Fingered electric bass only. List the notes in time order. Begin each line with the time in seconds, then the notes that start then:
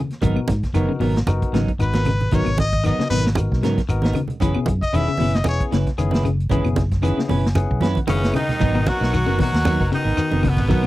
0.23 G#1
0.49 G#2
0.63 muted fingered electric bass stroke
0.73 F#1
1.00 G#1
1.26 F#1
1.53 G#1
1.79 G#1
2.33 G#1
2.46 G#1
2.98 muted fingered electric bass stroke
3.11 G#1
3.52 B1
3.62 G#2
3.89 G#1
4.42 F#1
4.68 F#2
4.82 muted fingered electric bass stroke
4.94 E1
5.20 F#1
5.46 E1
5.72 F#1
5.99 F#1
6.51 F#1
6.65 F#1
7.17 muted fingered electric bass stroke
7.29 F#1
7.70 B1
7.81 F#2
8.07 F#1
8.61 G#1
9.01 B1
9.27 F#1
9.53 D#2
9.81 F#1
10.05 G#1
10.17 muted fingered electric bass stroke
10.31 F#1
10.59 G#1
10.70 B1